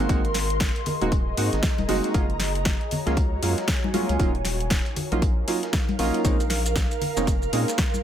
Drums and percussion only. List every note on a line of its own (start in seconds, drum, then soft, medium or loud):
0.09 kick loud
0.09 closed hi-hat medium
0.25 closed hi-hat soft
0.34 snare medium
0.34 closed hi-hat medium
0.34 open hi-hat loud
0.50 closed hi-hat medium
0.60 kick loud
0.60 snare loud
0.60 closed hi-hat medium
0.76 closed hi-hat soft
0.86 closed hi-hat medium
0.86 open hi-hat medium
0.86 low conga medium
1.02 closed hi-hat soft
1.12 kick loud
1.12 closed hi-hat medium
1.37 closed hi-hat medium
1.37 open hi-hat loud
1.53 snare soft
1.53 closed hi-hat medium
1.63 kick loud
1.63 snare loud
1.63 closed hi-hat medium
1.78 closed hi-hat soft
1.78 high conga medium
1.89 snare medium
1.89 open hi-hat loud
1.89 open hi-hat medium
1.89 high conga medium
2.04 closed hi-hat medium
2.14 kick loud
2.14 closed hi-hat medium
2.30 closed hi-hat soft
2.40 snare medium
2.40 closed hi-hat medium
2.40 open hi-hat loud
2.55 closed hi-hat soft
2.65 kick loud
2.65 snare loud
2.65 closed hi-hat medium
2.81 closed hi-hat soft
2.91 closed hi-hat medium
2.91 open hi-hat loud
2.91 low conga medium
3.07 snare medium
3.07 closed hi-hat medium
3.17 kick loud
3.17 closed hi-hat medium
3.43 closed hi-hat medium
3.43 open hi-hat loud
3.58 snare medium
3.58 closed hi-hat medium
3.68 kick loud
3.68 snare loud
3.68 closed hi-hat medium
3.84 high conga medium
3.94 closed hi-hat medium
3.94 open hi-hat loud
3.94 high conga medium
4.09 closed hi-hat soft
4.20 kick loud
4.20 closed hi-hat medium
4.35 closed hi-hat soft
4.45 snare medium
4.45 closed hi-hat medium
4.45 open hi-hat loud
4.61 closed hi-hat soft
4.70 kick loud
4.70 snare loud
4.70 closed hi-hat medium
4.86 closed hi-hat soft
4.96 closed hi-hat medium
4.96 open hi-hat medium
4.96 low conga medium
5.12 closed hi-hat soft
5.22 kick loud
5.22 closed hi-hat medium
5.48 closed hi-hat medium
5.48 open hi-hat loud
5.63 snare soft
5.63 closed hi-hat medium
5.73 kick loud
5.73 snare loud
5.73 closed hi-hat medium
5.89 closed hi-hat soft
5.89 high conga medium
5.99 snare medium
5.99 open hi-hat loud
5.99 open hi-hat medium
5.99 high conga medium
6.14 closed hi-hat medium
6.25 kick loud
6.25 closed hi-hat medium
6.25 maracas medium
6.40 closed hi-hat soft
6.40 maracas soft
6.50 snare medium
6.50 closed hi-hat medium
6.50 open hi-hat loud
6.66 closed hi-hat soft
6.66 maracas medium
6.76 kick loud
6.76 snare loud
6.76 closed hi-hat medium
6.76 maracas medium
6.91 closed hi-hat soft
6.91 maracas soft
7.01 closed hi-hat medium
7.01 open hi-hat medium
7.01 low conga medium
7.17 snare medium
7.17 closed hi-hat soft
7.17 maracas medium
7.27 kick loud
7.27 closed hi-hat medium
7.27 maracas medium
7.42 maracas soft
7.53 closed hi-hat medium
7.53 open hi-hat loud
7.68 snare medium
7.68 closed hi-hat soft
7.68 maracas medium
7.78 kick loud
7.78 snare loud
7.78 closed hi-hat medium
7.78 maracas medium
7.94 high conga medium
7.94 maracas soft